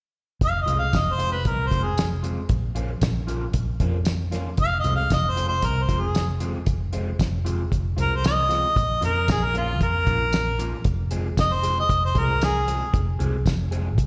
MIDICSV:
0, 0, Header, 1, 5, 480
1, 0, Start_track
1, 0, Key_signature, -4, "minor"
1, 0, Tempo, 522193
1, 376, Time_signature, 4, 2, 24, 8
1, 12930, End_track
2, 0, Start_track
2, 0, Title_t, "Harmonica"
2, 0, Program_c, 0, 22
2, 411, Note_on_c, 0, 77, 93
2, 549, Note_off_c, 0, 77, 0
2, 565, Note_on_c, 0, 75, 75
2, 707, Note_off_c, 0, 75, 0
2, 721, Note_on_c, 0, 77, 82
2, 891, Note_on_c, 0, 75, 71
2, 905, Note_off_c, 0, 77, 0
2, 1039, Note_on_c, 0, 72, 82
2, 1053, Note_off_c, 0, 75, 0
2, 1184, Note_off_c, 0, 72, 0
2, 1212, Note_on_c, 0, 71, 78
2, 1368, Note_on_c, 0, 70, 73
2, 1382, Note_off_c, 0, 71, 0
2, 1531, Note_on_c, 0, 72, 71
2, 1545, Note_off_c, 0, 70, 0
2, 1682, Note_on_c, 0, 68, 72
2, 1696, Note_off_c, 0, 72, 0
2, 1903, Note_off_c, 0, 68, 0
2, 4239, Note_on_c, 0, 77, 104
2, 4385, Note_off_c, 0, 77, 0
2, 4406, Note_on_c, 0, 75, 85
2, 4548, Note_off_c, 0, 75, 0
2, 4557, Note_on_c, 0, 77, 90
2, 4704, Note_off_c, 0, 77, 0
2, 4713, Note_on_c, 0, 75, 82
2, 4871, Note_on_c, 0, 72, 86
2, 4885, Note_off_c, 0, 75, 0
2, 5021, Note_off_c, 0, 72, 0
2, 5042, Note_on_c, 0, 72, 86
2, 5201, Note_on_c, 0, 70, 77
2, 5214, Note_off_c, 0, 72, 0
2, 5355, Note_on_c, 0, 72, 71
2, 5369, Note_off_c, 0, 70, 0
2, 5522, Note_on_c, 0, 68, 78
2, 5536, Note_off_c, 0, 72, 0
2, 5744, Note_off_c, 0, 68, 0
2, 7362, Note_on_c, 0, 70, 75
2, 7496, Note_on_c, 0, 72, 81
2, 7510, Note_off_c, 0, 70, 0
2, 7589, Note_off_c, 0, 72, 0
2, 7596, Note_on_c, 0, 75, 93
2, 8286, Note_off_c, 0, 75, 0
2, 8314, Note_on_c, 0, 70, 81
2, 8540, Note_off_c, 0, 70, 0
2, 8557, Note_on_c, 0, 68, 84
2, 8677, Note_on_c, 0, 70, 81
2, 8691, Note_off_c, 0, 68, 0
2, 8779, Note_off_c, 0, 70, 0
2, 8799, Note_on_c, 0, 65, 74
2, 9022, Note_off_c, 0, 65, 0
2, 9034, Note_on_c, 0, 70, 87
2, 9957, Note_off_c, 0, 70, 0
2, 10479, Note_on_c, 0, 75, 94
2, 10599, Note_on_c, 0, 72, 88
2, 10613, Note_off_c, 0, 75, 0
2, 10823, Note_off_c, 0, 72, 0
2, 10843, Note_on_c, 0, 75, 84
2, 11065, Note_off_c, 0, 75, 0
2, 11078, Note_on_c, 0, 72, 73
2, 11200, Note_on_c, 0, 70, 79
2, 11214, Note_off_c, 0, 72, 0
2, 11421, Note_off_c, 0, 70, 0
2, 11435, Note_on_c, 0, 68, 96
2, 11890, Note_off_c, 0, 68, 0
2, 12930, End_track
3, 0, Start_track
3, 0, Title_t, "Clean electric guitar"
3, 0, Program_c, 1, 27
3, 605, Note_on_c, 1, 65, 77
3, 616, Note_on_c, 1, 60, 55
3, 619, Note_on_c, 1, 56, 59
3, 759, Note_off_c, 1, 65, 0
3, 764, Note_off_c, 1, 60, 0
3, 766, Note_off_c, 1, 56, 0
3, 1086, Note_on_c, 1, 65, 56
3, 1094, Note_on_c, 1, 60, 55
3, 1100, Note_on_c, 1, 56, 46
3, 1239, Note_off_c, 1, 65, 0
3, 1243, Note_off_c, 1, 60, 0
3, 1246, Note_off_c, 1, 56, 0
3, 1569, Note_on_c, 1, 65, 61
3, 1575, Note_on_c, 1, 60, 55
3, 1584, Note_on_c, 1, 56, 51
3, 1721, Note_off_c, 1, 65, 0
3, 1724, Note_off_c, 1, 60, 0
3, 1728, Note_off_c, 1, 56, 0
3, 2047, Note_on_c, 1, 65, 63
3, 2055, Note_on_c, 1, 60, 58
3, 2062, Note_on_c, 1, 56, 58
3, 2200, Note_off_c, 1, 65, 0
3, 2204, Note_off_c, 1, 60, 0
3, 2207, Note_off_c, 1, 56, 0
3, 2528, Note_on_c, 1, 65, 73
3, 2537, Note_on_c, 1, 61, 71
3, 2541, Note_on_c, 1, 58, 71
3, 2544, Note_on_c, 1, 53, 61
3, 2680, Note_off_c, 1, 65, 0
3, 2685, Note_off_c, 1, 61, 0
3, 2687, Note_off_c, 1, 58, 0
3, 2689, Note_off_c, 1, 53, 0
3, 3008, Note_on_c, 1, 65, 69
3, 3013, Note_on_c, 1, 61, 61
3, 3020, Note_on_c, 1, 58, 59
3, 3024, Note_on_c, 1, 53, 61
3, 3161, Note_off_c, 1, 65, 0
3, 3163, Note_off_c, 1, 61, 0
3, 3167, Note_off_c, 1, 58, 0
3, 3169, Note_off_c, 1, 53, 0
3, 3493, Note_on_c, 1, 65, 69
3, 3498, Note_on_c, 1, 61, 69
3, 3503, Note_on_c, 1, 58, 66
3, 3510, Note_on_c, 1, 53, 60
3, 3644, Note_off_c, 1, 65, 0
3, 3646, Note_off_c, 1, 61, 0
3, 3648, Note_off_c, 1, 58, 0
3, 3652, Note_off_c, 1, 53, 0
3, 3966, Note_on_c, 1, 65, 72
3, 3971, Note_on_c, 1, 61, 69
3, 3978, Note_on_c, 1, 58, 66
3, 3981, Note_on_c, 1, 53, 57
3, 4120, Note_off_c, 1, 65, 0
3, 4123, Note_off_c, 1, 61, 0
3, 4126, Note_off_c, 1, 58, 0
3, 4127, Note_off_c, 1, 53, 0
3, 4450, Note_on_c, 1, 65, 70
3, 4456, Note_on_c, 1, 60, 62
3, 4459, Note_on_c, 1, 56, 59
3, 4467, Note_on_c, 1, 53, 61
3, 4602, Note_off_c, 1, 65, 0
3, 4605, Note_off_c, 1, 60, 0
3, 4607, Note_off_c, 1, 56, 0
3, 4611, Note_off_c, 1, 53, 0
3, 4928, Note_on_c, 1, 65, 68
3, 4934, Note_on_c, 1, 60, 58
3, 4939, Note_on_c, 1, 56, 56
3, 4946, Note_on_c, 1, 53, 55
3, 5081, Note_off_c, 1, 65, 0
3, 5084, Note_off_c, 1, 60, 0
3, 5087, Note_off_c, 1, 56, 0
3, 5090, Note_off_c, 1, 53, 0
3, 5407, Note_on_c, 1, 65, 62
3, 5414, Note_on_c, 1, 60, 62
3, 5419, Note_on_c, 1, 56, 53
3, 5425, Note_on_c, 1, 53, 51
3, 5561, Note_off_c, 1, 65, 0
3, 5564, Note_off_c, 1, 60, 0
3, 5567, Note_off_c, 1, 56, 0
3, 5570, Note_off_c, 1, 53, 0
3, 5885, Note_on_c, 1, 65, 74
3, 5893, Note_on_c, 1, 60, 70
3, 5897, Note_on_c, 1, 56, 57
3, 5902, Note_on_c, 1, 53, 65
3, 6040, Note_off_c, 1, 65, 0
3, 6044, Note_off_c, 1, 60, 0
3, 6046, Note_off_c, 1, 56, 0
3, 6049, Note_off_c, 1, 53, 0
3, 6367, Note_on_c, 1, 65, 71
3, 6373, Note_on_c, 1, 60, 63
3, 6377, Note_on_c, 1, 56, 73
3, 6382, Note_on_c, 1, 53, 70
3, 6521, Note_off_c, 1, 65, 0
3, 6524, Note_off_c, 1, 60, 0
3, 6526, Note_off_c, 1, 56, 0
3, 6529, Note_off_c, 1, 53, 0
3, 6845, Note_on_c, 1, 65, 68
3, 6852, Note_on_c, 1, 60, 72
3, 6857, Note_on_c, 1, 56, 55
3, 6862, Note_on_c, 1, 53, 52
3, 7001, Note_off_c, 1, 65, 0
3, 7004, Note_off_c, 1, 60, 0
3, 7006, Note_off_c, 1, 56, 0
3, 7009, Note_off_c, 1, 53, 0
3, 7322, Note_on_c, 1, 65, 57
3, 7329, Note_on_c, 1, 60, 54
3, 7333, Note_on_c, 1, 56, 52
3, 7337, Note_on_c, 1, 53, 58
3, 7479, Note_off_c, 1, 65, 0
3, 7482, Note_off_c, 1, 60, 0
3, 7484, Note_off_c, 1, 56, 0
3, 7486, Note_off_c, 1, 53, 0
3, 7802, Note_on_c, 1, 65, 67
3, 7808, Note_on_c, 1, 60, 61
3, 7814, Note_on_c, 1, 56, 51
3, 7818, Note_on_c, 1, 53, 50
3, 7958, Note_off_c, 1, 65, 0
3, 7962, Note_off_c, 1, 60, 0
3, 7965, Note_off_c, 1, 56, 0
3, 7967, Note_off_c, 1, 53, 0
3, 8282, Note_on_c, 1, 65, 76
3, 8288, Note_on_c, 1, 61, 65
3, 8294, Note_on_c, 1, 58, 62
3, 8299, Note_on_c, 1, 53, 54
3, 8438, Note_off_c, 1, 65, 0
3, 8441, Note_off_c, 1, 61, 0
3, 8445, Note_off_c, 1, 58, 0
3, 8447, Note_off_c, 1, 53, 0
3, 8767, Note_on_c, 1, 65, 69
3, 8772, Note_on_c, 1, 61, 61
3, 8776, Note_on_c, 1, 58, 54
3, 8781, Note_on_c, 1, 53, 49
3, 8921, Note_off_c, 1, 65, 0
3, 8923, Note_off_c, 1, 61, 0
3, 8925, Note_off_c, 1, 58, 0
3, 8928, Note_off_c, 1, 53, 0
3, 9249, Note_on_c, 1, 65, 72
3, 9257, Note_on_c, 1, 61, 60
3, 9259, Note_on_c, 1, 58, 49
3, 9265, Note_on_c, 1, 53, 52
3, 9401, Note_off_c, 1, 65, 0
3, 9405, Note_off_c, 1, 61, 0
3, 9407, Note_off_c, 1, 58, 0
3, 9409, Note_off_c, 1, 53, 0
3, 9733, Note_on_c, 1, 65, 70
3, 9738, Note_on_c, 1, 61, 65
3, 9743, Note_on_c, 1, 58, 65
3, 9749, Note_on_c, 1, 53, 60
3, 9883, Note_off_c, 1, 65, 0
3, 9886, Note_off_c, 1, 61, 0
3, 9888, Note_off_c, 1, 58, 0
3, 9891, Note_off_c, 1, 53, 0
3, 10211, Note_on_c, 1, 68, 74
3, 10217, Note_on_c, 1, 60, 68
3, 10223, Note_on_c, 1, 56, 65
3, 10227, Note_on_c, 1, 53, 72
3, 10362, Note_off_c, 1, 68, 0
3, 10365, Note_off_c, 1, 60, 0
3, 10368, Note_off_c, 1, 56, 0
3, 10370, Note_off_c, 1, 53, 0
3, 10688, Note_on_c, 1, 68, 62
3, 10695, Note_on_c, 1, 60, 68
3, 10697, Note_on_c, 1, 56, 59
3, 10703, Note_on_c, 1, 53, 59
3, 10840, Note_off_c, 1, 68, 0
3, 10844, Note_off_c, 1, 56, 0
3, 10844, Note_off_c, 1, 60, 0
3, 10847, Note_off_c, 1, 53, 0
3, 11164, Note_on_c, 1, 68, 74
3, 11169, Note_on_c, 1, 60, 61
3, 11177, Note_on_c, 1, 56, 61
3, 11180, Note_on_c, 1, 53, 50
3, 11317, Note_off_c, 1, 68, 0
3, 11320, Note_off_c, 1, 60, 0
3, 11324, Note_off_c, 1, 56, 0
3, 11325, Note_off_c, 1, 53, 0
3, 11647, Note_on_c, 1, 68, 72
3, 11653, Note_on_c, 1, 60, 65
3, 11658, Note_on_c, 1, 56, 58
3, 11662, Note_on_c, 1, 53, 53
3, 11798, Note_off_c, 1, 68, 0
3, 11801, Note_off_c, 1, 60, 0
3, 11804, Note_off_c, 1, 56, 0
3, 11806, Note_off_c, 1, 53, 0
3, 12125, Note_on_c, 1, 68, 75
3, 12128, Note_on_c, 1, 60, 78
3, 12134, Note_on_c, 1, 56, 68
3, 12139, Note_on_c, 1, 53, 73
3, 12277, Note_off_c, 1, 68, 0
3, 12278, Note_off_c, 1, 60, 0
3, 12281, Note_off_c, 1, 56, 0
3, 12284, Note_off_c, 1, 53, 0
3, 12604, Note_on_c, 1, 68, 75
3, 12611, Note_on_c, 1, 60, 65
3, 12615, Note_on_c, 1, 56, 68
3, 12621, Note_on_c, 1, 53, 64
3, 12756, Note_off_c, 1, 68, 0
3, 12759, Note_off_c, 1, 60, 0
3, 12761, Note_off_c, 1, 56, 0
3, 12764, Note_off_c, 1, 53, 0
3, 12930, End_track
4, 0, Start_track
4, 0, Title_t, "Fingered electric bass"
4, 0, Program_c, 2, 33
4, 379, Note_on_c, 2, 29, 89
4, 580, Note_off_c, 2, 29, 0
4, 614, Note_on_c, 2, 36, 73
4, 817, Note_off_c, 2, 36, 0
4, 858, Note_on_c, 2, 29, 96
4, 1336, Note_on_c, 2, 36, 89
4, 1349, Note_off_c, 2, 29, 0
4, 1538, Note_off_c, 2, 36, 0
4, 1575, Note_on_c, 2, 29, 87
4, 2183, Note_off_c, 2, 29, 0
4, 2296, Note_on_c, 2, 34, 90
4, 2701, Note_off_c, 2, 34, 0
4, 2773, Note_on_c, 2, 34, 89
4, 3180, Note_off_c, 2, 34, 0
4, 3253, Note_on_c, 2, 34, 95
4, 3457, Note_off_c, 2, 34, 0
4, 3496, Note_on_c, 2, 41, 79
4, 4104, Note_off_c, 2, 41, 0
4, 4209, Note_on_c, 2, 29, 91
4, 4415, Note_off_c, 2, 29, 0
4, 4450, Note_on_c, 2, 36, 80
4, 4656, Note_off_c, 2, 36, 0
4, 4693, Note_on_c, 2, 29, 97
4, 5169, Note_on_c, 2, 36, 99
4, 5183, Note_off_c, 2, 29, 0
4, 5376, Note_off_c, 2, 36, 0
4, 5410, Note_on_c, 2, 29, 86
4, 6021, Note_off_c, 2, 29, 0
4, 6128, Note_on_c, 2, 29, 88
4, 6538, Note_off_c, 2, 29, 0
4, 6611, Note_on_c, 2, 29, 87
4, 7019, Note_off_c, 2, 29, 0
4, 7092, Note_on_c, 2, 29, 97
4, 7297, Note_off_c, 2, 29, 0
4, 7327, Note_on_c, 2, 36, 79
4, 7939, Note_off_c, 2, 36, 0
4, 8056, Note_on_c, 2, 34, 91
4, 8260, Note_off_c, 2, 34, 0
4, 8292, Note_on_c, 2, 41, 81
4, 8497, Note_off_c, 2, 41, 0
4, 8533, Note_on_c, 2, 34, 92
4, 9017, Note_off_c, 2, 34, 0
4, 9017, Note_on_c, 2, 41, 106
4, 9220, Note_off_c, 2, 41, 0
4, 9254, Note_on_c, 2, 34, 92
4, 9862, Note_off_c, 2, 34, 0
4, 9974, Note_on_c, 2, 29, 94
4, 10379, Note_off_c, 2, 29, 0
4, 10452, Note_on_c, 2, 29, 84
4, 10858, Note_off_c, 2, 29, 0
4, 10934, Note_on_c, 2, 29, 94
4, 11137, Note_off_c, 2, 29, 0
4, 11174, Note_on_c, 2, 36, 79
4, 11780, Note_off_c, 2, 36, 0
4, 11893, Note_on_c, 2, 29, 92
4, 12095, Note_off_c, 2, 29, 0
4, 12135, Note_on_c, 2, 36, 73
4, 12336, Note_off_c, 2, 36, 0
4, 12368, Note_on_c, 2, 29, 94
4, 12850, Note_off_c, 2, 29, 0
4, 12850, Note_on_c, 2, 36, 107
4, 12930, Note_off_c, 2, 36, 0
4, 12930, End_track
5, 0, Start_track
5, 0, Title_t, "Drums"
5, 379, Note_on_c, 9, 36, 99
5, 380, Note_on_c, 9, 42, 67
5, 471, Note_off_c, 9, 36, 0
5, 472, Note_off_c, 9, 42, 0
5, 621, Note_on_c, 9, 42, 56
5, 713, Note_off_c, 9, 42, 0
5, 857, Note_on_c, 9, 42, 72
5, 857, Note_on_c, 9, 54, 100
5, 858, Note_on_c, 9, 36, 75
5, 870, Note_on_c, 9, 38, 98
5, 949, Note_off_c, 9, 42, 0
5, 949, Note_off_c, 9, 54, 0
5, 950, Note_off_c, 9, 36, 0
5, 961, Note_off_c, 9, 38, 0
5, 1098, Note_on_c, 9, 42, 55
5, 1190, Note_off_c, 9, 42, 0
5, 1334, Note_on_c, 9, 42, 76
5, 1336, Note_on_c, 9, 36, 80
5, 1426, Note_off_c, 9, 42, 0
5, 1428, Note_off_c, 9, 36, 0
5, 1576, Note_on_c, 9, 36, 66
5, 1576, Note_on_c, 9, 42, 57
5, 1668, Note_off_c, 9, 36, 0
5, 1668, Note_off_c, 9, 42, 0
5, 1816, Note_on_c, 9, 42, 75
5, 1816, Note_on_c, 9, 54, 89
5, 1829, Note_on_c, 9, 38, 101
5, 1908, Note_off_c, 9, 42, 0
5, 1908, Note_off_c, 9, 54, 0
5, 1920, Note_off_c, 9, 38, 0
5, 2057, Note_on_c, 9, 42, 62
5, 2148, Note_off_c, 9, 42, 0
5, 2290, Note_on_c, 9, 42, 74
5, 2294, Note_on_c, 9, 36, 97
5, 2382, Note_off_c, 9, 42, 0
5, 2386, Note_off_c, 9, 36, 0
5, 2533, Note_on_c, 9, 42, 56
5, 2625, Note_off_c, 9, 42, 0
5, 2771, Note_on_c, 9, 42, 83
5, 2771, Note_on_c, 9, 54, 103
5, 2775, Note_on_c, 9, 36, 75
5, 2784, Note_on_c, 9, 38, 105
5, 2863, Note_off_c, 9, 42, 0
5, 2863, Note_off_c, 9, 54, 0
5, 2867, Note_off_c, 9, 36, 0
5, 2876, Note_off_c, 9, 38, 0
5, 3018, Note_on_c, 9, 42, 55
5, 3110, Note_off_c, 9, 42, 0
5, 3249, Note_on_c, 9, 42, 77
5, 3254, Note_on_c, 9, 36, 80
5, 3341, Note_off_c, 9, 42, 0
5, 3346, Note_off_c, 9, 36, 0
5, 3493, Note_on_c, 9, 42, 57
5, 3494, Note_on_c, 9, 36, 70
5, 3585, Note_off_c, 9, 36, 0
5, 3585, Note_off_c, 9, 42, 0
5, 3724, Note_on_c, 9, 42, 61
5, 3724, Note_on_c, 9, 54, 90
5, 3737, Note_on_c, 9, 38, 90
5, 3816, Note_off_c, 9, 42, 0
5, 3816, Note_off_c, 9, 54, 0
5, 3829, Note_off_c, 9, 38, 0
5, 3972, Note_on_c, 9, 42, 58
5, 3985, Note_on_c, 9, 38, 28
5, 4064, Note_off_c, 9, 42, 0
5, 4077, Note_off_c, 9, 38, 0
5, 4205, Note_on_c, 9, 42, 66
5, 4211, Note_on_c, 9, 36, 94
5, 4297, Note_off_c, 9, 42, 0
5, 4303, Note_off_c, 9, 36, 0
5, 4449, Note_on_c, 9, 42, 55
5, 4541, Note_off_c, 9, 42, 0
5, 4691, Note_on_c, 9, 42, 86
5, 4691, Note_on_c, 9, 54, 101
5, 4693, Note_on_c, 9, 36, 68
5, 4704, Note_on_c, 9, 38, 101
5, 4783, Note_off_c, 9, 42, 0
5, 4783, Note_off_c, 9, 54, 0
5, 4785, Note_off_c, 9, 36, 0
5, 4796, Note_off_c, 9, 38, 0
5, 4937, Note_on_c, 9, 42, 58
5, 5029, Note_off_c, 9, 42, 0
5, 5169, Note_on_c, 9, 42, 80
5, 5172, Note_on_c, 9, 36, 72
5, 5261, Note_off_c, 9, 42, 0
5, 5264, Note_off_c, 9, 36, 0
5, 5412, Note_on_c, 9, 36, 69
5, 5412, Note_on_c, 9, 42, 64
5, 5503, Note_off_c, 9, 36, 0
5, 5504, Note_off_c, 9, 42, 0
5, 5650, Note_on_c, 9, 42, 69
5, 5650, Note_on_c, 9, 54, 90
5, 5663, Note_on_c, 9, 38, 92
5, 5742, Note_off_c, 9, 42, 0
5, 5742, Note_off_c, 9, 54, 0
5, 5754, Note_off_c, 9, 38, 0
5, 5886, Note_on_c, 9, 42, 54
5, 5978, Note_off_c, 9, 42, 0
5, 6125, Note_on_c, 9, 42, 77
5, 6129, Note_on_c, 9, 36, 91
5, 6217, Note_off_c, 9, 42, 0
5, 6221, Note_off_c, 9, 36, 0
5, 6367, Note_on_c, 9, 42, 60
5, 6459, Note_off_c, 9, 42, 0
5, 6613, Note_on_c, 9, 36, 71
5, 6613, Note_on_c, 9, 42, 78
5, 6613, Note_on_c, 9, 54, 99
5, 6626, Note_on_c, 9, 38, 106
5, 6705, Note_off_c, 9, 36, 0
5, 6705, Note_off_c, 9, 42, 0
5, 6705, Note_off_c, 9, 54, 0
5, 6718, Note_off_c, 9, 38, 0
5, 6858, Note_on_c, 9, 42, 57
5, 6950, Note_off_c, 9, 42, 0
5, 7094, Note_on_c, 9, 36, 78
5, 7099, Note_on_c, 9, 42, 70
5, 7186, Note_off_c, 9, 36, 0
5, 7191, Note_off_c, 9, 42, 0
5, 7334, Note_on_c, 9, 42, 58
5, 7426, Note_off_c, 9, 42, 0
5, 7577, Note_on_c, 9, 42, 59
5, 7577, Note_on_c, 9, 54, 92
5, 7590, Note_on_c, 9, 38, 97
5, 7669, Note_off_c, 9, 42, 0
5, 7669, Note_off_c, 9, 54, 0
5, 7682, Note_off_c, 9, 38, 0
5, 7819, Note_on_c, 9, 42, 52
5, 7831, Note_on_c, 9, 38, 31
5, 7910, Note_off_c, 9, 42, 0
5, 7923, Note_off_c, 9, 38, 0
5, 8055, Note_on_c, 9, 36, 97
5, 8057, Note_on_c, 9, 42, 76
5, 8147, Note_off_c, 9, 36, 0
5, 8149, Note_off_c, 9, 42, 0
5, 8294, Note_on_c, 9, 42, 59
5, 8385, Note_off_c, 9, 42, 0
5, 8531, Note_on_c, 9, 42, 77
5, 8531, Note_on_c, 9, 54, 107
5, 8534, Note_on_c, 9, 36, 68
5, 8544, Note_on_c, 9, 38, 114
5, 8623, Note_off_c, 9, 42, 0
5, 8623, Note_off_c, 9, 54, 0
5, 8626, Note_off_c, 9, 36, 0
5, 8636, Note_off_c, 9, 38, 0
5, 8777, Note_on_c, 9, 42, 50
5, 8869, Note_off_c, 9, 42, 0
5, 9015, Note_on_c, 9, 42, 74
5, 9016, Note_on_c, 9, 36, 83
5, 9107, Note_off_c, 9, 42, 0
5, 9108, Note_off_c, 9, 36, 0
5, 9254, Note_on_c, 9, 36, 69
5, 9254, Note_on_c, 9, 42, 60
5, 9346, Note_off_c, 9, 36, 0
5, 9346, Note_off_c, 9, 42, 0
5, 9492, Note_on_c, 9, 42, 69
5, 9492, Note_on_c, 9, 54, 98
5, 9505, Note_on_c, 9, 38, 86
5, 9584, Note_off_c, 9, 42, 0
5, 9584, Note_off_c, 9, 54, 0
5, 9597, Note_off_c, 9, 38, 0
5, 9738, Note_on_c, 9, 42, 58
5, 9830, Note_off_c, 9, 42, 0
5, 9968, Note_on_c, 9, 42, 71
5, 9974, Note_on_c, 9, 36, 97
5, 10060, Note_off_c, 9, 42, 0
5, 10066, Note_off_c, 9, 36, 0
5, 10209, Note_on_c, 9, 42, 63
5, 10301, Note_off_c, 9, 42, 0
5, 10454, Note_on_c, 9, 36, 79
5, 10456, Note_on_c, 9, 42, 79
5, 10456, Note_on_c, 9, 54, 109
5, 10468, Note_on_c, 9, 38, 101
5, 10546, Note_off_c, 9, 36, 0
5, 10548, Note_off_c, 9, 42, 0
5, 10548, Note_off_c, 9, 54, 0
5, 10560, Note_off_c, 9, 38, 0
5, 10694, Note_on_c, 9, 42, 63
5, 10786, Note_off_c, 9, 42, 0
5, 10933, Note_on_c, 9, 36, 88
5, 10935, Note_on_c, 9, 42, 76
5, 11025, Note_off_c, 9, 36, 0
5, 11027, Note_off_c, 9, 42, 0
5, 11171, Note_on_c, 9, 42, 57
5, 11172, Note_on_c, 9, 36, 69
5, 11263, Note_off_c, 9, 42, 0
5, 11264, Note_off_c, 9, 36, 0
5, 11411, Note_on_c, 9, 42, 71
5, 11411, Note_on_c, 9, 54, 96
5, 11424, Note_on_c, 9, 38, 92
5, 11503, Note_off_c, 9, 42, 0
5, 11503, Note_off_c, 9, 54, 0
5, 11516, Note_off_c, 9, 38, 0
5, 11655, Note_on_c, 9, 42, 60
5, 11747, Note_off_c, 9, 42, 0
5, 11891, Note_on_c, 9, 36, 108
5, 11892, Note_on_c, 9, 42, 70
5, 11983, Note_off_c, 9, 36, 0
5, 11984, Note_off_c, 9, 42, 0
5, 12135, Note_on_c, 9, 42, 53
5, 12227, Note_off_c, 9, 42, 0
5, 12370, Note_on_c, 9, 36, 76
5, 12372, Note_on_c, 9, 42, 75
5, 12372, Note_on_c, 9, 54, 99
5, 12385, Note_on_c, 9, 38, 102
5, 12462, Note_off_c, 9, 36, 0
5, 12464, Note_off_c, 9, 42, 0
5, 12464, Note_off_c, 9, 54, 0
5, 12477, Note_off_c, 9, 38, 0
5, 12613, Note_on_c, 9, 42, 53
5, 12705, Note_off_c, 9, 42, 0
5, 12850, Note_on_c, 9, 36, 80
5, 12853, Note_on_c, 9, 42, 73
5, 12930, Note_off_c, 9, 36, 0
5, 12930, Note_off_c, 9, 42, 0
5, 12930, End_track
0, 0, End_of_file